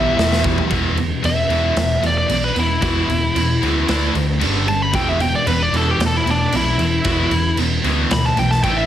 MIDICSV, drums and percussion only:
0, 0, Header, 1, 2, 480
1, 0, Start_track
1, 0, Key_signature, 1, "minor"
1, 0, Tempo, 528634
1, 652, Time_signature, 4, 2, 24, 8
1, 8047, End_track
2, 0, Start_track
2, 0, Title_t, "Drums"
2, 175, Note_on_c, 9, 38, 102
2, 265, Note_off_c, 9, 38, 0
2, 295, Note_on_c, 9, 38, 90
2, 385, Note_off_c, 9, 38, 0
2, 403, Note_on_c, 9, 36, 102
2, 493, Note_off_c, 9, 36, 0
2, 527, Note_on_c, 9, 43, 86
2, 618, Note_off_c, 9, 43, 0
2, 642, Note_on_c, 9, 36, 99
2, 644, Note_on_c, 9, 49, 72
2, 733, Note_off_c, 9, 36, 0
2, 735, Note_off_c, 9, 49, 0
2, 884, Note_on_c, 9, 49, 58
2, 975, Note_off_c, 9, 49, 0
2, 1124, Note_on_c, 9, 49, 76
2, 1215, Note_off_c, 9, 49, 0
2, 1363, Note_on_c, 9, 49, 46
2, 1454, Note_off_c, 9, 49, 0
2, 1602, Note_on_c, 9, 49, 69
2, 1609, Note_on_c, 9, 38, 89
2, 1693, Note_off_c, 9, 49, 0
2, 1700, Note_off_c, 9, 38, 0
2, 1846, Note_on_c, 9, 49, 53
2, 1937, Note_off_c, 9, 49, 0
2, 2083, Note_on_c, 9, 49, 79
2, 2174, Note_off_c, 9, 49, 0
2, 2323, Note_on_c, 9, 49, 53
2, 2414, Note_off_c, 9, 49, 0
2, 2560, Note_on_c, 9, 49, 67
2, 2563, Note_on_c, 9, 36, 105
2, 2651, Note_off_c, 9, 49, 0
2, 2654, Note_off_c, 9, 36, 0
2, 2810, Note_on_c, 9, 49, 54
2, 2901, Note_off_c, 9, 49, 0
2, 3050, Note_on_c, 9, 49, 70
2, 3141, Note_off_c, 9, 49, 0
2, 3293, Note_on_c, 9, 49, 42
2, 3384, Note_off_c, 9, 49, 0
2, 3526, Note_on_c, 9, 49, 68
2, 3532, Note_on_c, 9, 38, 98
2, 3617, Note_off_c, 9, 49, 0
2, 3623, Note_off_c, 9, 38, 0
2, 3769, Note_on_c, 9, 49, 55
2, 3860, Note_off_c, 9, 49, 0
2, 4006, Note_on_c, 9, 49, 77
2, 4097, Note_off_c, 9, 49, 0
2, 4247, Note_on_c, 9, 49, 55
2, 4338, Note_off_c, 9, 49, 0
2, 4482, Note_on_c, 9, 36, 108
2, 4482, Note_on_c, 9, 49, 76
2, 4573, Note_off_c, 9, 36, 0
2, 4573, Note_off_c, 9, 49, 0
2, 4723, Note_on_c, 9, 49, 59
2, 4814, Note_off_c, 9, 49, 0
2, 4965, Note_on_c, 9, 49, 75
2, 5055, Note_off_c, 9, 49, 0
2, 5209, Note_on_c, 9, 49, 58
2, 5300, Note_off_c, 9, 49, 0
2, 5449, Note_on_c, 9, 49, 74
2, 5456, Note_on_c, 9, 38, 107
2, 5540, Note_off_c, 9, 49, 0
2, 5546, Note_off_c, 9, 38, 0
2, 5694, Note_on_c, 9, 49, 59
2, 5785, Note_off_c, 9, 49, 0
2, 5924, Note_on_c, 9, 49, 76
2, 6015, Note_off_c, 9, 49, 0
2, 6165, Note_on_c, 9, 49, 60
2, 6256, Note_off_c, 9, 49, 0
2, 6396, Note_on_c, 9, 49, 72
2, 6401, Note_on_c, 9, 36, 113
2, 6487, Note_off_c, 9, 49, 0
2, 6491, Note_off_c, 9, 36, 0
2, 6639, Note_on_c, 9, 49, 55
2, 6729, Note_off_c, 9, 49, 0
2, 6875, Note_on_c, 9, 49, 74
2, 6966, Note_off_c, 9, 49, 0
2, 7121, Note_on_c, 9, 49, 50
2, 7212, Note_off_c, 9, 49, 0
2, 7361, Note_on_c, 9, 49, 68
2, 7367, Note_on_c, 9, 38, 98
2, 7452, Note_off_c, 9, 49, 0
2, 7458, Note_off_c, 9, 38, 0
2, 7600, Note_on_c, 9, 49, 57
2, 7690, Note_off_c, 9, 49, 0
2, 7731, Note_on_c, 9, 38, 33
2, 7821, Note_off_c, 9, 38, 0
2, 7842, Note_on_c, 9, 36, 82
2, 7843, Note_on_c, 9, 49, 72
2, 7933, Note_off_c, 9, 36, 0
2, 7933, Note_off_c, 9, 49, 0
2, 8047, End_track
0, 0, End_of_file